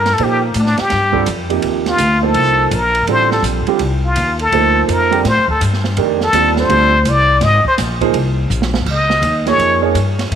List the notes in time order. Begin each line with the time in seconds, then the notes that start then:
Already playing: G2
0.00 A#4
0.05 snare, ride
0.14 A4
0.18 A#2 F3 A#3 D#4 A4 C5, ride
0.23 G4
0.45 A#3
0.54 A2, hi-hat pedal, ride
0.59 D4
0.66 snare
0.77 G4, muted upright bass stroke, snare, ride
0.90 G2, snare, ride
1.12 D3 G3 C4 F4 A4, kick
1.26 F2, hi-hat pedal, ride
1.49 C3 F3 A#3 D#4 G4, ride
1.62 D#2, ride
1.86 F4, snare, ride
1.98 D2, hi-hat pedal, ride
2.22 F3 A#3 D#4 A4 C5
2.34 C2, ride
2.71 A#1 A#4, hi-hat pedal, ride
2.95 ride
3.07 A1 D3 G3 C4 F4 A4, ride
3.12 C5
3.31 A4, snare
3.42 A#1, hi-hat pedal, ride
3.67 D3 G3 C4 F4 G4, muted upright bass stroke, ride
3.79 C2, ride
4.05 F4
4.16 D#2, hi-hat pedal, ride
4.39 A4, ride
4.52 D2 F3 A#3 D#4 A4 C5, ride
4.88 F2 A#4, hi-hat pedal, ride
5.11 D3 G3 C4 F4 G4, ride
5.25 A2 C5, snare, ride
5.37 F2
5.48 D2 A4, kick
5.61 G2, hi-hat pedal, ride
5.73 snare
5.84 snare
5.97 F2 D#3 A3 D4 G4 A#4, ride
6.21 A4, snare
6.33 D#2 D3 G3 C4 F4 A4, hi-hat pedal, ride
6.56 C5, snare
6.69 D2 D3 G3 C4 F4 A4, ride
7.05 C2, hi-hat pedal, ride
7.09 D5
7.41 G#1 D#5, snare, ride
7.65 C5, muted upright bass stroke, kick
7.78 A#1, snare, hi-hat pedal, ride
8.01 F3 A#3 D#4 G#4 C5, kick, ride
8.14 C2, ride
8.50 A#1, hi-hat pedal
8.62 snare
8.74 snare
8.86 C#2, kick, crash
8.91 D#5
9.10 snare
9.22 D#2, hi-hat pedal, ride
9.46 F3 A#3 D#4 G#4 C#5, snare, ride
9.58 F2, ride
9.81 F3 A#3 D#4 G#4 C#5
9.94 G2, hi-hat pedal, ride
10.19 snare, ride
10.31 G#2, ride